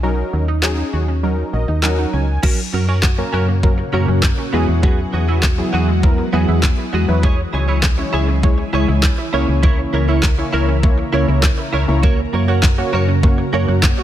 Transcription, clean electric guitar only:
2.43 2.59 C#4 medium
2.43 2.60 F#4 medium
2.43 2.60 A#4 medium
2.73 2.86 C#4 medium
2.73 2.86 F#4 medium
2.73 2.86 A#4 medium
2.88 3.01 C#4 medium
2.88 3.01 F#4 medium
2.88 3.01 A#4 medium
3.18 muted clean electric guitar stroke soft
3.33 3.49 C#4 medium
3.33 3.48 F#4 medium
3.33 3.47 A#4 medium
3.48 muted clean electric guitar stroke soft
3.63 muted clean electric guitar stroke soft
3.78 muted clean electric guitar stroke medium
3.93 4.09 C#4 medium
3.93 4.08 F#4 medium
3.93 4.07 A#4 medium
4.08 muted clean electric guitar stroke soft
4.38 muted clean electric guitar stroke medium
4.53 4.69 B3 medium
4.53 4.68 F#4 medium
4.53 4.67 G#4 medium
4.68 muted clean electric guitar stroke soft
4.83 4.99 B3 medium
4.83 5.00 F#4 medium
4.83 5.00 G#4 medium
5.13 5.26 B3 medium
5.13 5.26 F#4 medium
5.13 5.27 G#4 medium
5.28 5.42 B3 medium
5.28 5.41 F#4 medium
5.28 5.41 G#4 medium
5.43 muted clean electric guitar stroke soft
5.58 muted clean electric guitar stroke soft
5.73 5.89 B3 medium
5.73 5.88 F#4 medium
5.73 5.87 G#4 loud
5.88 muted clean electric guitar stroke medium
6.03 muted clean electric guitar stroke soft
6.18 muted clean electric guitar stroke soft
6.33 6.49 B3 medium
6.33 6.48 F#4 medium
6.33 6.47 G#4 medium
6.48 muted clean electric guitar stroke soft
6.63 muted clean electric guitar stroke soft
6.78 muted clean electric guitar stroke soft
6.93 7.09 B3 medium
6.93 7.08 F#4 medium
6.93 7.07 G#4 medium
7.08 muted clean electric guitar stroke soft
7.23 7.39 E4 medium
7.23 7.40 G#4 medium
7.23 7.40 C#5 medium
7.53 7.66 E4 medium
7.53 7.66 G#4 medium
7.53 7.67 C#5 medium
7.68 7.82 E4 medium
7.68 7.81 G#4 medium
7.68 7.81 C#5 medium
7.98 muted clean electric guitar stroke soft
8.13 8.29 E4 medium
8.13 8.28 G#4 medium
8.13 8.27 C#5 medium
8.28 muted clean electric guitar stroke soft
8.43 muted clean electric guitar stroke soft
8.58 muted clean electric guitar stroke soft
8.73 8.89 E4 medium
8.73 8.88 G#4 medium
8.73 8.87 C#5 loud
8.88 muted clean electric guitar stroke medium
9.18 muted clean electric guitar stroke soft
9.33 9.49 E4 medium
9.33 9.48 A#4 medium
9.33 9.47 C#5 medium
9.48 muted clean electric guitar stroke soft
9.63 9.79 E4 medium
9.63 9.80 A#4 medium
9.63 9.80 C#5 medium
9.93 10.06 E4 medium
9.93 10.06 A#4 medium
9.93 10.07 C#5 medium
10.08 10.22 E4 medium
10.08 10.21 A#4 medium
10.08 10.21 C#5 medium
10.38 muted clean electric guitar stroke soft
10.53 10.69 E4 medium
10.53 10.68 A#4 medium
10.53 10.67 C#5 medium
10.68 muted clean electric guitar stroke soft
10.83 muted clean electric guitar stroke soft
10.98 muted clean electric guitar stroke soft
11.13 11.29 E4 medium
11.13 11.28 A#4 medium
11.13 11.27 C#5 medium
11.28 muted clean electric guitar stroke soft
11.43 muted clean electric guitar stroke soft
11.58 muted clean electric guitar stroke soft
11.73 11.89 E4 medium
11.73 11.88 A#4 medium
11.73 11.87 C#5 medium
11.88 muted clean electric guitar stroke soft
12.03 12.19 F#4 medium
12.03 12.20 A#4 medium
12.03 12.20 C#5 medium
12.33 12.46 F#4 medium
12.33 12.46 A#4 medium
12.33 12.47 C#5 medium
12.48 12.62 F#4 medium
12.48 12.61 A#4 medium
12.48 12.61 C#5 medium
12.63 muted clean electric guitar stroke soft
12.78 muted clean electric guitar stroke soft
12.93 13.09 F#4 medium
12.93 13.08 A#4 medium
12.93 13.07 C#5 medium
13.08 muted clean electric guitar stroke soft
13.23 muted clean electric guitar stroke soft
13.38 muted clean electric guitar stroke soft
13.53 13.69 F#4 medium
13.53 13.68 A#4 medium
13.53 13.67 C#5 medium
13.68 muted clean electric guitar stroke medium
13.98 muted clean electric guitar stroke soft

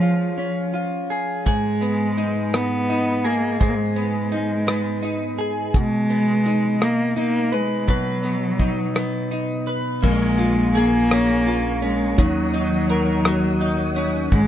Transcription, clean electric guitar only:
0.00 1.46 F3 medium
0.00 0.36 C#4 soft
0.00 0.73 F4 soft
0.00 1.10 G#4 soft
0.38 1.53 C#4 soft
0.74 1.53 F4 soft
1.10 1.46 G#4 soft
1.46 3.59 G#2 medium
1.46 3.23 G#4 soft
1.81 3.96 B3 soft
2.17 2.89 D#4 soft
2.90 4.31 D#4 soft
3.24 3.59 G#4 soft
3.60 5.74 G#2 medium
3.60 5.37 G#4 soft
3.96 4.67 B3 soft
4.32 5.02 D#4 soft
4.67 6.10 B3 soft
5.03 6.45 D#4 soft
5.39 5.74 G#4 medium
5.74 7.86 B2 medium
6.10 6.81 B3 soft
6.46 7.15 D#4 soft
7.16 8.58 D#4 soft
7.52 7.87 B4 soft
7.88 10.04 B2 medium
7.88 9.66 B4 medium
8.23 8.94 B3 soft
8.60 9.30 D#4 soft
8.95 10.11 B3 soft
9.31 10.11 D#4 soft
9.67 10.11 B4 soft
10.02 13.25 A#3 medium
10.38 11.45 F4 soft
10.75 12.26 G#4 medium
11.11 11.82 C#4 medium
11.47 12.26 F4 medium
11.82 12.57 C#4 soft
12.18 14.47 D#3 medium
12.54 13.60 D#4 soft
12.90 14.40 A#4 medium
13.26 14.47 F#3 medium
13.61 14.47 D#4 medium
13.96 14.39 C#4 medium
14.32 14.47 G#2 medium

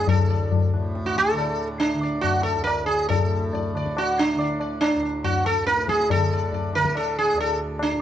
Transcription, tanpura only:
0.00 0.12 D2 medium
0.00 0.73 A2 medium
0.00 1.33 D3 medium
0.12 2.54 D2 medium
0.74 3.15 A2 medium
1.33 1.94 D3 medium
1.94 3.73 D3 soft
2.54 4.94 D2 soft
3.16 5.54 A2 medium
3.73 4.34 D3 medium
4.34 6.14 D3 medium
4.95 7.33 D2 soft
5.54 7.92 A2 medium
6.14 6.75 D3 medium
6.75 8.02 D3 medium
7.33 8.02 D2 medium
7.93 8.02 A2 medium

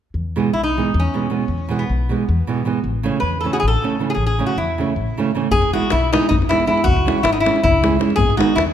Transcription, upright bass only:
0.14 0.38 E2 medium
0.54 0.78 B1 medium
0.94 1.06 E2 medium
1.48 1.72 E2 medium
1.89 2.13 B1 medium
2.29 2.41 E2 medium
2.84 3.08 A1 medium
3.22 3.46 E2 medium
3.63 3.75 A1 medium
4.16 4.40 A1 medium
4.56 4.81 E2 medium
4.96 5.08 A1 medium
5.51 5.75 E1 medium
5.92 6.16 B1 medium
6.31 6.63 E1 medium
6.84 7.08 C#2 medium
7.24 7.48 G#1 medium
7.63 7.96 C#2 medium
8.17 8.41 G#1 medium
8.57 8.73 D#2 medium

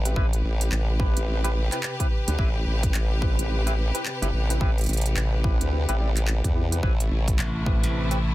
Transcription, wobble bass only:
0.00 0.15 A1 medium
0.16 0.42 A1 loud
0.44 0.70 A1 loud
0.72 1.14 A1 loud
1.17 1.69 A1 loud
2.28 2.37 D2 loud
2.39 2.65 A1 medium
2.66 2.92 A1 medium
2.94 3.36 A1 loud
3.39 3.92 A1 loud
4.22 4.31 G1 loud
4.33 4.59 A1 medium
4.61 4.87 A1 loud
4.89 5.15 A1 medium
5.16 5.58 A1 medium
5.61 5.86 D2 loud
5.89 6.42 A1 loud
6.44 6.81 E2 loud
6.83 7.09 A1 loud
7.11 7.37 A1 loud

